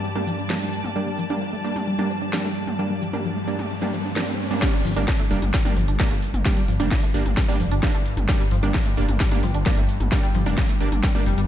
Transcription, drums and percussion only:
0.04 shaker soft
0.16 mid tom medium
0.27 shaker medium
0.38 shaker soft
0.50 snare loud
0.50 shaker soft
0.73 shaker medium
0.84 mid tom medium
0.84 shaker soft
0.96 shaker soft
1.19 shaker medium
1.30 mid tom medium
1.30 shaker soft
1.42 shaker soft
1.65 shaker medium
1.76 mid tom medium
1.76 shaker soft
1.87 shaker soft
1.99 mid tom medium
2.10 shaker medium
2.22 shaker soft
2.33 snare loud
2.33 shaker soft
2.56 shaker medium
2.67 mid tom medium
2.67 shaker soft
2.79 shaker soft
3.02 shaker medium
3.13 mid tom medium
3.13 shaker soft
3.25 shaker soft
3.48 shaker medium
3.59 mid tom medium
3.59 shaker soft
3.71 shaker soft
3.82 mid tom medium
3.93 shaker medium
4.05 shaker soft
4.16 snare loud
4.16 shaker soft
4.39 shaker medium
4.51 mid tom medium
4.51 shaker soft
4.62 kick loud
4.62 snare loud
4.62 closed hi-hat medium
4.62 crash loud
4.62 shaker soft
4.74 closed hi-hat medium
4.85 open hi-hat loud
4.85 shaker medium
4.96 closed hi-hat medium
4.96 mid tom medium
4.96 shaker soft
5.08 kick loud
5.08 snare loud
5.08 closed hi-hat medium
5.08 shaker soft
5.19 closed hi-hat medium
5.31 open hi-hat medium
5.31 shaker medium
5.42 closed hi-hat medium
5.42 mid tom medium
5.42 shaker soft
5.54 kick loud
5.54 snare loud
5.54 closed hi-hat medium
5.54 shaker soft
5.65 closed hi-hat medium
5.65 mid tom medium
5.77 open hi-hat loud
5.77 shaker medium
5.88 closed hi-hat medium
5.88 shaker soft
6.00 kick loud
6.00 snare loud
6.00 closed hi-hat medium
6.00 shaker soft
6.11 closed hi-hat medium
6.23 open hi-hat medium
6.23 shaker medium
6.34 closed hi-hat medium
6.34 mid tom medium
6.34 shaker soft
6.45 kick loud
6.45 snare loud
6.45 closed hi-hat medium
6.45 shaker soft
6.57 closed hi-hat medium
6.68 open hi-hat loud
6.68 shaker medium
6.80 closed hi-hat medium
6.80 mid tom medium
6.80 shaker soft
6.91 kick loud
6.91 snare loud
6.91 closed hi-hat medium
6.91 shaker soft
7.03 closed hi-hat medium
7.14 open hi-hat medium
7.14 shaker medium
7.26 closed hi-hat medium
7.26 mid tom medium
7.26 shaker soft
7.37 kick loud
7.37 snare loud
7.37 closed hi-hat medium
7.37 shaker soft
7.49 closed hi-hat medium
7.49 mid tom medium
7.60 open hi-hat loud
7.60 shaker medium
7.71 closed hi-hat medium
7.71 shaker soft
7.83 kick loud
7.83 snare loud
7.83 closed hi-hat medium
7.83 shaker soft
7.94 closed hi-hat medium
8.06 open hi-hat medium
8.06 shaker medium
8.17 closed hi-hat medium
8.17 mid tom medium
8.17 shaker soft
8.29 kick loud
8.29 snare loud
8.29 closed hi-hat medium
8.29 shaker soft
8.40 closed hi-hat medium
8.51 open hi-hat loud
8.51 shaker medium
8.63 closed hi-hat medium
8.63 mid tom loud
8.63 shaker soft
8.74 kick loud
8.74 snare loud
8.74 closed hi-hat medium
8.74 shaker soft
8.86 closed hi-hat medium
8.97 open hi-hat medium
8.97 shaker medium
9.09 closed hi-hat medium
9.09 mid tom loud
9.09 shaker soft
9.20 kick loud
9.20 snare loud
9.20 closed hi-hat medium
9.20 shaker soft
9.31 closed hi-hat medium
9.31 mid tom medium
9.43 open hi-hat loud
9.43 shaker medium
9.54 closed hi-hat medium
9.54 shaker soft
9.66 kick loud
9.66 snare loud
9.66 closed hi-hat medium
9.66 shaker soft
9.77 closed hi-hat medium
9.89 open hi-hat medium
9.89 shaker medium
10.00 closed hi-hat medium
10.00 mid tom medium
10.00 shaker soft
10.12 kick loud
10.12 snare loud
10.12 closed hi-hat medium
10.12 shaker soft
10.23 closed hi-hat medium
10.35 open hi-hat loud
10.35 shaker medium
10.46 closed hi-hat medium
10.46 mid tom loud
10.46 shaker soft
10.58 kick loud
10.58 snare loud
10.58 closed hi-hat medium
10.58 shaker soft
10.69 closed hi-hat medium
10.81 open hi-hat medium
10.81 shaker medium
10.92 closed hi-hat medium
10.92 mid tom loud
10.92 shaker soft
11.03 kick loud
11.03 snare loud
11.03 closed hi-hat medium
11.03 shaker soft
11.15 closed hi-hat medium
11.15 mid tom loud
11.26 open hi-hat loud
11.26 shaker medium
11.38 closed hi-hat medium
11.38 shaker soft

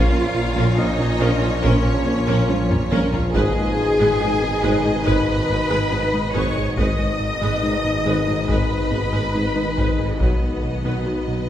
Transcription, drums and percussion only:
1.63 taiko medium
2.49 taiko high medium
2.71 taiko low-mid medium
2.92 taiko high loud
3.13 taiko low loud
3.35 taiko loud
5.06 taiko medium
6.35 taiko medium
6.77 taiko loud
8.49 taiko medium
9.78 taiko medium
10.21 taiko medium

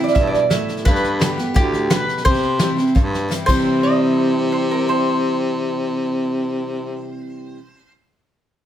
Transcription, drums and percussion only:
0.07 snare soft
0.16 kick loud
0.16 snare soft
0.34 snare soft
0.50 snare loud
0.50 hi-hat pedal medium
0.68 snare soft
0.77 snare soft
0.86 kick loud
0.86 snare soft
0.95 snare soft
1.04 snare soft
1.21 snare loud
1.21 hi-hat pedal medium
1.38 snare soft
1.56 kick loud
1.56 snare soft
1.73 snare soft
1.90 snare loud
1.90 hi-hat pedal medium
2.08 snare soft
2.17 snare soft
2.25 kick loud
2.25 snare soft
2.34 snare soft
2.43 snare soft
2.59 snare loud
2.59 hi-hat pedal medium
2.78 snare soft
2.87 snare soft
2.96 kick loud
2.96 snare soft
3.14 snare soft
3.31 snare soft
3.31 hi-hat pedal medium
3.48 kick medium
3.48 crash medium

